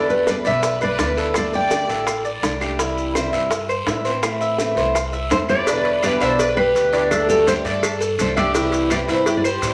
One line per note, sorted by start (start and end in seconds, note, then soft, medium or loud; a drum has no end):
0.00 0.39 E2 medium
0.00 0.26 B2 medium
0.00 0.26 D3 medium
0.00 0.26 G3 medium
0.00 0.27 B3 medium
0.00 0.26 D4 medium
0.00 0.27 E4 medium
0.10 0.26 G4 medium
0.10 0.26 B4 medium
0.10 maracas soft
0.27 0.61 B2 medium
0.27 0.61 D3 medium
0.27 0.62 G3 medium
0.27 0.62 B3 medium
0.27 0.63 E4 medium
0.27 0.44 B4 medium
0.27 0.36 B4 medium
0.27 0.34 D5 medium
0.27 high bongo medium
0.27 short guiro medium
0.27 claves medium
0.27 maracas medium
0.45 0.95 B1 medium
0.45 0.80 B4 medium
0.45 0.80 D5 medium
0.45 0.83 E5 medium
0.45 short guiro medium
0.45 maracas soft
0.63 muted steel-string acoustic guitar stroke medium
0.63 high bongo medium
0.63 long guiro medium
0.63 maracas medium
0.81 0.99 B4 medium
0.81 1.32 B4 medium
0.81 1.36 D5 medium
0.81 claves medium
0.81 maracas soft
0.99 1.83 D2 medium
0.99 1.16 D3 soft
0.99 1.16 G3 medium
0.99 1.16 B3 medium
0.99 1.15 E4 medium
0.99 1.17 D5 medium
0.99 high bongo medium
0.99 low bongo medium
0.99 short guiro medium
0.99 maracas medium
1.16 1.33 D3 medium
1.16 1.34 G3 medium
1.16 1.34 B3 medium
1.16 1.34 E4 medium
1.16 1.52 A4 medium
1.16 short guiro medium
1.16 maracas soft
1.34 1.69 D3 medium
1.34 1.69 A3 medium
1.34 1.70 D4 medium
1.34 1.70 G4 medium
1.34 1.53 A4 medium
1.34 1.53 D5 medium
1.34 high bongo medium
1.34 long guiro medium
1.34 claves medium
1.34 maracas medium
1.53 1.88 D5 medium
1.53 2.22 D5 medium
1.53 2.22 G5 medium
1.53 high bongo soft
1.53 maracas soft
1.70 2.05 D3 medium
1.70 2.05 A3 medium
1.70 2.06 D4 medium
1.70 2.06 G4 medium
1.70 high bongo medium
1.70 short guiro medium
1.70 maracas medium
1.88 2.39 A1 medium
1.88 2.24 A4 medium
1.88 high bongo soft
1.88 short guiro medium
1.88 maracas soft
2.06 muted steel-string acoustic guitar stroke medium
2.06 high bongo medium
2.06 long guiro medium
2.06 claves medium
2.06 maracas medium
2.25 2.60 D5 medium
2.25 maracas soft
2.42 3.27 C2 medium
2.42 2.60 D3 soft
2.42 2.60 A3 medium
2.42 2.60 D4 medium
2.42 2.59 G4 medium
2.42 high bongo medium
2.42 low bongo medium
2.42 short guiro medium
2.42 maracas medium
2.60 2.79 A3 medium
2.60 2.79 D4 medium
2.60 2.78 G4 medium
2.60 2.79 G4 medium
2.60 high bongo soft
2.60 short guiro medium
2.60 claves medium
2.60 maracas soft
2.78 3.14 C3 medium
2.78 3.14 E3 medium
2.78 3.14 G3 medium
2.78 3.15 C4 medium
2.78 3.14 E4 medium
2.78 3.15 E4 medium
2.78 high bongo medium
2.78 long guiro medium
2.78 maracas medium
2.98 maracas soft
3.15 3.50 C3 medium
3.15 3.50 E3 medium
3.15 3.50 G3 medium
3.15 3.50 C4 medium
3.15 3.51 E4 medium
3.15 3.32 C5 medium
3.15 high bongo medium
3.15 short guiro medium
3.15 claves medium
3.15 maracas medium
3.33 3.83 G2 medium
3.33 3.68 E5 medium
3.33 short guiro medium
3.33 maracas soft
3.50 muted steel-string acoustic guitar stroke medium
3.50 high bongo medium
3.50 long guiro medium
3.50 maracas medium
3.69 3.87 C5 medium
3.69 claves medium
3.69 maracas soft
3.87 4.71 A2 medium
3.87 4.04 E3 soft
3.87 4.05 G3 medium
3.87 4.04 C4 soft
3.87 4.03 E4 soft
3.87 4.05 E5 medium
3.87 high bongo medium
3.87 low bongo medium
3.87 short guiro medium
3.87 maracas medium
4.05 4.22 E3 medium
4.05 4.23 G3 medium
4.05 4.23 C4 medium
4.05 4.22 E4 medium
4.05 4.40 C5 medium
4.05 short guiro medium
4.05 maracas soft
4.23 4.58 E3 medium
4.23 4.59 A3 medium
4.23 4.59 C4 medium
4.23 4.59 E4 medium
4.23 high bongo medium
4.23 long guiro medium
4.23 claves medium
4.23 maracas medium
4.41 4.76 E5 medium
4.41 high bongo soft
4.41 maracas soft
4.58 4.94 E3 medium
4.58 4.94 A3 medium
4.58 4.94 C4 medium
4.58 4.94 E4 medium
4.58 high bongo medium
4.58 short guiro medium
4.58 maracas medium
4.76 5.27 C2 medium
4.76 5.12 C5 medium
4.76 high bongo soft
4.76 short guiro medium
4.76 maracas soft
4.94 muted steel-string acoustic guitar stroke medium
4.94 high bongo medium
4.94 long guiro medium
4.94 claves medium
4.94 maracas medium
5.13 5.48 E5 medium
5.13 maracas soft
5.30 6.15 E2 medium
5.30 5.49 E3 soft
5.30 5.49 A3 soft
5.30 5.48 C4 medium
5.30 5.47 E4 medium
5.30 5.39 A4 medium
5.30 5.37 C5 medium
5.30 high bongo medium
5.30 low bongo medium
5.30 short guiro medium
5.30 maracas medium
5.48 5.67 A3 medium
5.48 5.66 C4 medium
5.48 5.66 E4 medium
5.48 5.67 G4 medium
5.48 5.99 B4 medium
5.48 5.99 D5 loud
5.48 high bongo soft
5.48 short guiro medium
5.48 claves medium
5.48 maracas soft
5.66 6.02 B2 medium
5.66 6.02 D3 medium
5.66 6.03 G3 medium
5.66 6.03 B3 medium
5.66 6.02 D4 medium
5.66 6.03 E4 medium
5.66 cowbell loud
5.66 long guiro medium
5.66 maracas medium
5.85 cowbell medium
6.03 6.38 B2 medium
6.03 6.38 D3 medium
6.03 6.39 G3 medium
6.03 6.39 B3 medium
6.03 6.39 E4 medium
6.03 6.21 G4 medium
6.03 6.20 B4 medium
6.03 6.21 D5 medium
6.03 cowbell medium
6.03 short guiro medium
6.03 claves medium
6.03 maracas medium
6.20 6.71 B1 medium
6.20 6.56 D4 medium
6.20 6.39 C5 medium
6.20 6.39 E5 loud
6.20 short guiro medium
6.20 maracas soft
6.39 6.57 B4 medium
6.39 6.57 D5 loud
6.39 muted steel-string acoustic guitar stroke medium
6.39 cowbell loud
6.39 long guiro medium
6.39 maracas medium
6.57 7.07 G4 medium
6.57 6.92 B4 medium
6.57 7.07 B4 loud
6.57 claves medium
6.74 7.59 D2 medium
6.74 6.92 D3 medium
6.74 6.92 G3 medium
6.74 6.92 B3 medium
6.74 6.92 E4 medium
6.74 cowbell medium
6.74 short guiro medium
6.74 maracas medium
6.93 7.10 D3 medium
6.93 7.11 G3 medium
6.93 7.10 B3 medium
6.93 7.27 D4 medium
6.93 7.10 E4 medium
6.93 cowbell medium
6.93 short guiro medium
6.93 maracas soft
7.11 7.46 D3 medium
7.11 7.47 A3 medium
7.11 7.28 D4 medium
7.11 7.47 D4 medium
7.11 7.47 G4 medium
7.11 7.28 A4 medium
7.11 cowbell loud
7.11 long guiro medium
7.11 claves medium
7.11 maracas medium
7.29 7.46 F#4 medium
7.29 7.63 G4 medium
7.29 7.46 A4 medium
7.29 maracas medium
7.47 7.82 D3 medium
7.47 7.83 A3 medium
7.47 7.83 D4 medium
7.47 7.83 G4 medium
7.47 7.56 A4 medium
7.47 7.53 C5 medium
7.47 cowbell medium
7.47 short guiro medium
7.47 maracas medium
7.64 8.15 G2 medium
7.64 8.01 A4 medium
7.64 8.00 D5 medium
7.64 8.01 D5 loud
7.64 short guiro medium
7.64 maracas soft
7.83 muted steel-string acoustic guitar stroke medium
7.83 cowbell loud
7.83 long guiro medium
7.83 claves medium
7.83 maracas medium
8.00 8.35 A4 medium
8.00 maracas medium
8.18 9.02 C2 medium
8.18 8.36 D3 medium
8.18 8.36 A3 medium
8.18 8.36 D4 medium
8.18 8.35 G4 medium
8.18 8.36 A4 medium
8.18 8.37 C5 medium
8.18 cowbell medium
8.18 short guiro medium
8.18 maracas medium
8.37 8.55 A3 medium
8.37 8.54 D4 medium
8.37 8.54 G4 medium
8.37 8.87 G4 medium
8.37 8.90 D5 loud
8.37 8.54 E5 medium
8.37 cowbell medium
8.37 short guiro medium
8.37 claves medium
8.37 maracas soft
8.54 8.90 C3 medium
8.54 8.91 E3 medium
8.54 8.91 G3 medium
8.54 8.91 C4 medium
8.54 8.89 E4 medium
8.54 8.91 E4 medium
8.54 cowbell loud
8.54 long guiro medium
8.54 maracas medium
8.72 cowbell medium
8.72 maracas medium
8.90 9.26 C3 medium
8.90 9.26 E3 medium
8.90 9.27 G3 medium
8.90 9.27 C4 medium
8.90 9.27 E4 medium
8.90 9.08 G4 medium
8.90 8.99 G4 medium
8.90 8.96 D5 loud
8.90 cowbell medium
8.90 short guiro medium
8.90 claves medium
8.90 maracas medium
9.08 9.58 G2 medium
9.08 9.43 E4 medium
9.08 9.27 C5 medium
9.08 9.27 E5 loud
9.08 short guiro medium
9.08 maracas soft
9.26 9.37 G4 medium
9.26 9.36 D5 medium
9.26 muted steel-string acoustic guitar stroke medium
9.26 cowbell loud
9.26 long guiro medium
9.26 maracas medium
9.36 9.43 B4 medium
9.36 9.45 D5 medium
9.44 9.74 G4 medium
9.44 9.74 C5 medium
9.44 claves medium
9.44 maracas medium
9.62 9.74 A2 medium
9.62 9.74 E3 medium
9.62 9.74 G3 medium
9.62 9.74 C4 medium
9.62 9.74 E4 medium
9.62 cowbell medium
9.62 short guiro medium
9.62 maracas medium